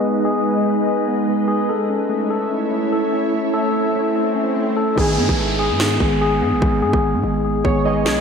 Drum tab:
SD |----------------|----------------|----------------|--------o-------|
BD |----------------|----------------|----------------|o--o------o-----|

SD |--------------o-|
BD |o--o------o-----|